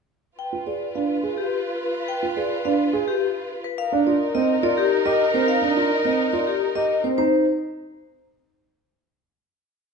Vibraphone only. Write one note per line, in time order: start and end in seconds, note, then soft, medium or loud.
0.39 0.57 G5 medium
0.67 0.85 D5 soft
0.95 1.14 F5 soft
1.38 1.56 G4 medium
1.95 2.13 B4 medium
2.08 2.27 G5 medium
2.37 2.55 D5 medium
2.65 2.83 F5 medium
3.08 3.26 G4 medium
3.64 3.83 B4 medium
3.78 3.97 F5 medium
4.07 4.25 D5 medium
4.35 4.53 D#5 medium
4.63 4.82 D5 medium
4.78 4.96 G4 medium
5.05 5.24 D#5 medium
5.34 5.52 C5 medium
5.48 5.67 F5 medium
5.76 5.95 D5 medium
6.05 6.23 D#5 medium
6.33 6.51 D5 medium
6.47 6.66 G4 medium
6.75 6.94 D#5 medium
7.04 7.17 C5 medium
7.18 7.44 C5 medium